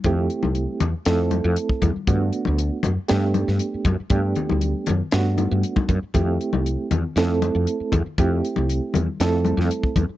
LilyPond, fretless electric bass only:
\new Staff \with { instrumentName = "Fretless electric bass" } { \clef bass \time 4/4 \key f \major \tempo 4 = 118 f,8 r16 c,8 r16 e,16 r16 f,8. f,16 r8 e,16 r16 | g,8 r16 d,8 r16 fis,16 r16 g,8. g,16 r8 fis,16 r16 | g,8 r16 d,8 r16 fis,16 r16 g,8. g,16 r8 fis,16 r16 | f,8 r16 c,8 r16 e,16 r16 f,8. f,16 r8 e,16 r16 |
f,8 r16 c,8 r16 e,16 r16 f,8. f,16 r8 e,16 r16 | }